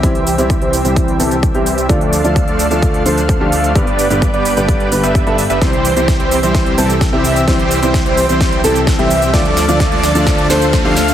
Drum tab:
HH |xxoxxxoxxxoxxxox|xxoxxxoxxxoxx-ox|xxoxxxoxxxoxxxox|xxoxxxoxxxoxx-ox|
SH |x-xxx-xxx-xxx-xx|x-xxx-xxx-xxx-xx|x-xxx-xxx-xxx-xx|x-xxx-xxx-xxx-xx|
SD |----------------|----------------|----------------|o---o---o---o---|
BD |o---o---o---o---|o---o---o---o---|o---o---o---o---|o---o---o---o---|

HH |xxoxxxoxxxoxxxox|xxoxxxoxxxoxx-ox|
SH |x-xxx-xxx-xxx-xx|x-xxx-xxx-xxx-xx|
SD |o---o---o---o---|o-o-o-o-o-o-o-o-|
BD |o---o---o---o---|o---o---o---o---|